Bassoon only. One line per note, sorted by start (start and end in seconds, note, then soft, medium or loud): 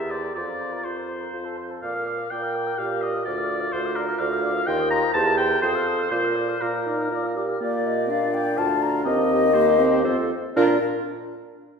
0.00 0.30 E2 medium
0.37 0.80 F2 medium
0.85 1.28 F2 medium
1.33 1.77 F2 medium
1.83 2.25 A#2 medium
2.31 2.73 A#2 medium
2.79 3.21 A#2 medium
3.27 3.67 D2 medium
3.73 4.14 D2 medium
4.20 4.62 D2 loud
4.67 5.02 D#2 loud
5.14 5.57 E2 loud
5.62 6.06 F2 loud
6.11 6.55 A#2 medium
6.62 7.06 A#2 medium
7.11 7.55 A#2 medium
7.61 8.59 A#2 medium
8.58 9.05 D2 loud
9.05 10.06 D#2 loud
10.05 10.31 F2 loud
10.57 10.78 A#2 loud